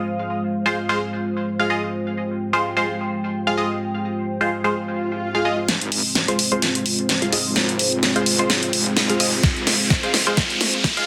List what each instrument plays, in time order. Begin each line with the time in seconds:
Already playing: analog synth pad G#3 F4 C5 F5
0.66 synth stab G#3 F4 C5
0.89 synth stab G#3 F4 C5
1.59 synth stab G#3 F4 F5
1.70 synth stab G#3 F4 D#5
1.93 analog synth pad G5
2.53 synth stab G#3 F4 C5
2.77 synth stab G#3 F4 C5
3.47 synth stab G#3 F4 F5
3.57 synth stab G#3 F4 D#5
4.41 synth stab G#3 F4 C5
4.64 synth stab G#3 F4 C5
4.75 swell
5.35 synth stab G#3 F4 F5
5.45 synth stab G#3 F4 D#5
5.68 wobble bass F1, analog synth pad G#3 C4 F4 C5, snare, closed hi-hat, riser
5.81 wobble bass G#1, closed hi-hat
5.92 open hi-hat
6.15 snare, closed hi-hat
6.28 synth stab G#3 F4 C5, closed hi-hat
6.39 open hi-hat
6.52 synth stab G#3 F4 C5, closed hi-hat
6.62 snare, closed hi-hat
6.75 closed hi-hat
6.86 open hi-hat
6.99 closed hi-hat
7.09 snare, closed hi-hat
7.22 wobble bass F1, synth stab G#3 F4 F5, closed hi-hat
7.32 synth stab G#3 F4 D#5, open hi-hat
7.45 wobble bass G#1
7.56 snare, closed hi-hat
7.69 closed hi-hat
7.79 open hi-hat
7.92 wobble bass F1, closed hi-hat
8.03 snare, closed hi-hat
8.16 synth stab G#3 F4 C5, closed hi-hat
8.26 wobble bass D#1, open hi-hat
8.39 synth stab G#3 F4 C5, closed hi-hat
8.50 snare, closed hi-hat
8.63 closed hi-hat
8.73 wobble bass F1, open hi-hat
8.97 wobble bass F1, snare, closed hi-hat
9.09 synth stab G#3 F4 F5, closed hi-hat
9.20 synth stab G#3 F4 D#5, open hi-hat
9.43 wobble bass F1, kick, snare, closed hi-hat
9.56 wobble bass G#1, closed hi-hat
9.67 snare, open hi-hat
9.90 kick, snare, closed hi-hat
10.03 synth stab G#3 F4 C5, closed hi-hat
10.14 snare, open hi-hat
10.27 synth stab G#3 F4 C5, closed hi-hat
10.37 kick, snare, closed hi-hat
10.50 closed hi-hat
10.61 snare, open hi-hat
10.74 closed hi-hat
10.84 kick, snare, closed hi-hat
10.97 wobble bass F1, synth stab G#3 F4 F5, closed hi-hat